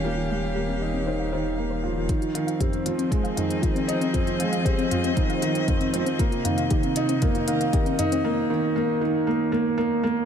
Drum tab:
HH |----------------|xxxxxxxxxxxxxxxx|xxxxxxxxxxxxxxxx|xxxxxxxxxxxxxxxx|
T2 |----------------|----o-----o-----|o-----o-----o---|--o-----o-----o-|
BD |----------------|o---o---o---o---|o---o---o---o---|o---o---o---o---|

HH |----------------|
T2 |----------------|
BD |----------------|